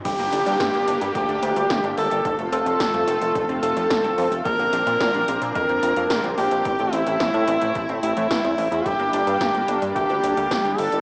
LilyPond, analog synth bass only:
\new Staff \with { instrumentName = "Analog synth bass" } { \clef bass \time 4/4 \key g \dorian \tempo 4 = 109 g,,16 g,,16 g,,16 g,16 g,16 g,,16 g,,16 g,16 d,16 d,16 d,16 d,16 g,,16 g,,16 g,,16 g,,16 | f,,16 f,,16 f,,16 f,,16 f,,16 f,16 f,,16 f,,16 f,,16 f,,16 f,,16 f,,16 f,,16 f,,16 f,16 f,,16 | bes,,16 bes,,16 bes,,16 bes,16 bes,16 bes,,16 bes,,16 bes,16 f,16 f,16 f,16 f,16 bes,,16 bes,,16 bes,,16 bes,,16 | a,,16 a,,16 a,,16 a,,16 a,,16 a,16 a,,16 a,,16 a,,16 a,,16 a,,16 a,16 a,,16 e,16 a,,16 e,16 |
g,,16 g,,16 g,,16 g,16 g,16 g,,16 g,,16 g,16 d,16 d,16 d,16 d,16 g,,16 g,,16 g,,16 g,,16 | }